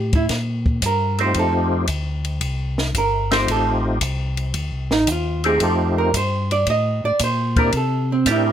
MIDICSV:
0, 0, Header, 1, 5, 480
1, 0, Start_track
1, 0, Tempo, 530973
1, 1233, Time_signature, 4, 2, 24, 8
1, 7703, End_track
2, 0, Start_track
2, 0, Title_t, "Hollow-body jazz guitar"
2, 0, Program_c, 0, 26
2, 0, Note_on_c, 0, 67, 79
2, 103, Note_off_c, 0, 67, 0
2, 140, Note_on_c, 0, 64, 84
2, 224, Note_off_c, 0, 64, 0
2, 777, Note_on_c, 0, 70, 72
2, 1087, Note_off_c, 0, 70, 0
2, 1093, Note_on_c, 0, 72, 93
2, 1233, Note_off_c, 0, 72, 0
2, 1259, Note_on_c, 0, 69, 83
2, 1568, Note_off_c, 0, 69, 0
2, 2695, Note_on_c, 0, 70, 78
2, 3005, Note_off_c, 0, 70, 0
2, 3009, Note_on_c, 0, 72, 99
2, 3152, Note_off_c, 0, 72, 0
2, 3177, Note_on_c, 0, 69, 86
2, 3368, Note_off_c, 0, 69, 0
2, 4452, Note_on_c, 0, 63, 81
2, 4593, Note_off_c, 0, 63, 0
2, 4626, Note_on_c, 0, 65, 78
2, 4932, Note_off_c, 0, 65, 0
2, 4937, Note_on_c, 0, 68, 86
2, 5076, Note_off_c, 0, 68, 0
2, 5092, Note_on_c, 0, 69, 83
2, 5404, Note_off_c, 0, 69, 0
2, 5408, Note_on_c, 0, 70, 83
2, 5551, Note_off_c, 0, 70, 0
2, 5575, Note_on_c, 0, 72, 92
2, 5885, Note_off_c, 0, 72, 0
2, 5894, Note_on_c, 0, 74, 104
2, 6034, Note_off_c, 0, 74, 0
2, 6055, Note_on_c, 0, 75, 106
2, 6366, Note_off_c, 0, 75, 0
2, 6374, Note_on_c, 0, 74, 104
2, 6514, Note_off_c, 0, 74, 0
2, 6542, Note_on_c, 0, 72, 84
2, 6849, Note_off_c, 0, 72, 0
2, 6857, Note_on_c, 0, 70, 90
2, 6996, Note_off_c, 0, 70, 0
2, 7024, Note_on_c, 0, 69, 78
2, 7330, Note_off_c, 0, 69, 0
2, 7342, Note_on_c, 0, 60, 71
2, 7478, Note_off_c, 0, 60, 0
2, 7507, Note_on_c, 0, 64, 86
2, 7703, Note_off_c, 0, 64, 0
2, 7703, End_track
3, 0, Start_track
3, 0, Title_t, "Tonewheel organ"
3, 0, Program_c, 1, 16
3, 1075, Note_on_c, 1, 57, 59
3, 1084, Note_on_c, 1, 60, 51
3, 1088, Note_on_c, 1, 65, 57
3, 1090, Note_on_c, 1, 63, 59
3, 1097, Note_on_c, 1, 67, 64
3, 1679, Note_off_c, 1, 57, 0
3, 1684, Note_off_c, 1, 60, 0
3, 1686, Note_off_c, 1, 65, 0
3, 1687, Note_off_c, 1, 63, 0
3, 1690, Note_off_c, 1, 67, 0
3, 2993, Note_on_c, 1, 57, 71
3, 2999, Note_on_c, 1, 60, 67
3, 3003, Note_on_c, 1, 63, 67
3, 3011, Note_on_c, 1, 65, 62
3, 3014, Note_on_c, 1, 67, 75
3, 3598, Note_off_c, 1, 57, 0
3, 3601, Note_off_c, 1, 60, 0
3, 3603, Note_off_c, 1, 63, 0
3, 3607, Note_off_c, 1, 65, 0
3, 3609, Note_off_c, 1, 67, 0
3, 4920, Note_on_c, 1, 57, 57
3, 4928, Note_on_c, 1, 60, 53
3, 4932, Note_on_c, 1, 63, 52
3, 4937, Note_on_c, 1, 65, 52
3, 4937, Note_on_c, 1, 67, 69
3, 5522, Note_off_c, 1, 57, 0
3, 5526, Note_off_c, 1, 60, 0
3, 5528, Note_off_c, 1, 63, 0
3, 5530, Note_off_c, 1, 65, 0
3, 5530, Note_off_c, 1, 67, 0
3, 6842, Note_on_c, 1, 58, 64
3, 6843, Note_on_c, 1, 60, 63
3, 6852, Note_on_c, 1, 62, 64
3, 6854, Note_on_c, 1, 64, 62
3, 6863, Note_on_c, 1, 67, 73
3, 6977, Note_off_c, 1, 58, 0
3, 6978, Note_off_c, 1, 60, 0
3, 6982, Note_off_c, 1, 62, 0
3, 6983, Note_off_c, 1, 64, 0
3, 6988, Note_off_c, 1, 67, 0
3, 7468, Note_on_c, 1, 70, 67
3, 7472, Note_on_c, 1, 60, 66
3, 7479, Note_on_c, 1, 62, 60
3, 7483, Note_on_c, 1, 64, 63
3, 7486, Note_on_c, 1, 67, 75
3, 7703, Note_off_c, 1, 60, 0
3, 7703, Note_off_c, 1, 62, 0
3, 7703, Note_off_c, 1, 64, 0
3, 7703, Note_off_c, 1, 67, 0
3, 7703, Note_off_c, 1, 70, 0
3, 7703, End_track
4, 0, Start_track
4, 0, Title_t, "Tonewheel organ"
4, 0, Program_c, 2, 16
4, 0, Note_on_c, 2, 45, 80
4, 257, Note_off_c, 2, 45, 0
4, 264, Note_on_c, 2, 46, 76
4, 734, Note_off_c, 2, 46, 0
4, 745, Note_on_c, 2, 43, 86
4, 1215, Note_off_c, 2, 43, 0
4, 1222, Note_on_c, 2, 41, 92
4, 1693, Note_off_c, 2, 41, 0
4, 1700, Note_on_c, 2, 38, 81
4, 2172, Note_off_c, 2, 38, 0
4, 2179, Note_on_c, 2, 36, 78
4, 2652, Note_off_c, 2, 36, 0
4, 2662, Note_on_c, 2, 31, 88
4, 3133, Note_off_c, 2, 31, 0
4, 3144, Note_on_c, 2, 33, 91
4, 3614, Note_off_c, 2, 33, 0
4, 3628, Note_on_c, 2, 36, 88
4, 4096, Note_off_c, 2, 36, 0
4, 4106, Note_on_c, 2, 38, 80
4, 4265, Note_off_c, 2, 38, 0
4, 4269, Note_on_c, 2, 36, 50
4, 4431, Note_off_c, 2, 36, 0
4, 4433, Note_on_c, 2, 33, 65
4, 4582, Note_off_c, 2, 33, 0
4, 4588, Note_on_c, 2, 39, 93
4, 5056, Note_off_c, 2, 39, 0
4, 5071, Note_on_c, 2, 41, 96
4, 5538, Note_off_c, 2, 41, 0
4, 5548, Note_on_c, 2, 43, 84
4, 6016, Note_off_c, 2, 43, 0
4, 6032, Note_on_c, 2, 45, 82
4, 6340, Note_off_c, 2, 45, 0
4, 6364, Note_on_c, 2, 45, 42
4, 6439, Note_off_c, 2, 45, 0
4, 6508, Note_on_c, 2, 46, 88
4, 6976, Note_off_c, 2, 46, 0
4, 6989, Note_on_c, 2, 48, 91
4, 7456, Note_off_c, 2, 48, 0
4, 7466, Note_on_c, 2, 45, 83
4, 7703, Note_off_c, 2, 45, 0
4, 7703, End_track
5, 0, Start_track
5, 0, Title_t, "Drums"
5, 114, Note_on_c, 9, 51, 45
5, 118, Note_on_c, 9, 36, 54
5, 205, Note_off_c, 9, 51, 0
5, 208, Note_off_c, 9, 36, 0
5, 262, Note_on_c, 9, 51, 57
5, 265, Note_on_c, 9, 38, 36
5, 266, Note_on_c, 9, 36, 20
5, 353, Note_off_c, 9, 51, 0
5, 355, Note_off_c, 9, 38, 0
5, 356, Note_off_c, 9, 36, 0
5, 594, Note_on_c, 9, 36, 51
5, 685, Note_off_c, 9, 36, 0
5, 740, Note_on_c, 9, 44, 59
5, 740, Note_on_c, 9, 51, 65
5, 743, Note_on_c, 9, 36, 23
5, 830, Note_off_c, 9, 44, 0
5, 830, Note_off_c, 9, 51, 0
5, 833, Note_off_c, 9, 36, 0
5, 1070, Note_on_c, 9, 51, 45
5, 1161, Note_off_c, 9, 51, 0
5, 1214, Note_on_c, 9, 51, 58
5, 1219, Note_on_c, 9, 36, 19
5, 1305, Note_off_c, 9, 51, 0
5, 1310, Note_off_c, 9, 36, 0
5, 1694, Note_on_c, 9, 44, 56
5, 1694, Note_on_c, 9, 51, 67
5, 1700, Note_on_c, 9, 36, 22
5, 1784, Note_off_c, 9, 44, 0
5, 1784, Note_off_c, 9, 51, 0
5, 1791, Note_off_c, 9, 36, 0
5, 2029, Note_on_c, 9, 51, 46
5, 2120, Note_off_c, 9, 51, 0
5, 2177, Note_on_c, 9, 51, 64
5, 2181, Note_on_c, 9, 36, 21
5, 2267, Note_off_c, 9, 51, 0
5, 2271, Note_off_c, 9, 36, 0
5, 2514, Note_on_c, 9, 38, 52
5, 2604, Note_off_c, 9, 38, 0
5, 2662, Note_on_c, 9, 36, 24
5, 2662, Note_on_c, 9, 44, 51
5, 2662, Note_on_c, 9, 51, 67
5, 2752, Note_off_c, 9, 44, 0
5, 2752, Note_off_c, 9, 51, 0
5, 2753, Note_off_c, 9, 36, 0
5, 2995, Note_on_c, 9, 51, 48
5, 2998, Note_on_c, 9, 38, 54
5, 3086, Note_off_c, 9, 51, 0
5, 3089, Note_off_c, 9, 38, 0
5, 3145, Note_on_c, 9, 36, 20
5, 3147, Note_on_c, 9, 51, 62
5, 3235, Note_off_c, 9, 36, 0
5, 3237, Note_off_c, 9, 51, 0
5, 3624, Note_on_c, 9, 44, 54
5, 3624, Note_on_c, 9, 51, 74
5, 3625, Note_on_c, 9, 36, 27
5, 3714, Note_off_c, 9, 44, 0
5, 3714, Note_off_c, 9, 51, 0
5, 3716, Note_off_c, 9, 36, 0
5, 3952, Note_on_c, 9, 51, 49
5, 4042, Note_off_c, 9, 51, 0
5, 4101, Note_on_c, 9, 51, 62
5, 4106, Note_on_c, 9, 36, 22
5, 4192, Note_off_c, 9, 51, 0
5, 4196, Note_off_c, 9, 36, 0
5, 4437, Note_on_c, 9, 38, 56
5, 4528, Note_off_c, 9, 38, 0
5, 4583, Note_on_c, 9, 44, 64
5, 4583, Note_on_c, 9, 51, 73
5, 4588, Note_on_c, 9, 36, 24
5, 4673, Note_off_c, 9, 44, 0
5, 4673, Note_off_c, 9, 51, 0
5, 4678, Note_off_c, 9, 36, 0
5, 4915, Note_on_c, 9, 51, 45
5, 5005, Note_off_c, 9, 51, 0
5, 5062, Note_on_c, 9, 51, 62
5, 5068, Note_on_c, 9, 36, 18
5, 5153, Note_off_c, 9, 51, 0
5, 5159, Note_off_c, 9, 36, 0
5, 5549, Note_on_c, 9, 44, 54
5, 5549, Note_on_c, 9, 51, 70
5, 5550, Note_on_c, 9, 36, 24
5, 5639, Note_off_c, 9, 44, 0
5, 5639, Note_off_c, 9, 51, 0
5, 5640, Note_off_c, 9, 36, 0
5, 5884, Note_on_c, 9, 51, 50
5, 5974, Note_off_c, 9, 51, 0
5, 6025, Note_on_c, 9, 51, 59
5, 6028, Note_on_c, 9, 36, 22
5, 6115, Note_off_c, 9, 51, 0
5, 6119, Note_off_c, 9, 36, 0
5, 6502, Note_on_c, 9, 44, 56
5, 6502, Note_on_c, 9, 51, 78
5, 6508, Note_on_c, 9, 36, 24
5, 6593, Note_off_c, 9, 44, 0
5, 6593, Note_off_c, 9, 51, 0
5, 6598, Note_off_c, 9, 36, 0
5, 6837, Note_on_c, 9, 51, 46
5, 6838, Note_on_c, 9, 36, 57
5, 6927, Note_off_c, 9, 51, 0
5, 6928, Note_off_c, 9, 36, 0
5, 6983, Note_on_c, 9, 51, 58
5, 6988, Note_on_c, 9, 36, 20
5, 7073, Note_off_c, 9, 51, 0
5, 7079, Note_off_c, 9, 36, 0
5, 7465, Note_on_c, 9, 44, 57
5, 7465, Note_on_c, 9, 51, 74
5, 7466, Note_on_c, 9, 36, 22
5, 7555, Note_off_c, 9, 44, 0
5, 7555, Note_off_c, 9, 51, 0
5, 7556, Note_off_c, 9, 36, 0
5, 7703, End_track
0, 0, End_of_file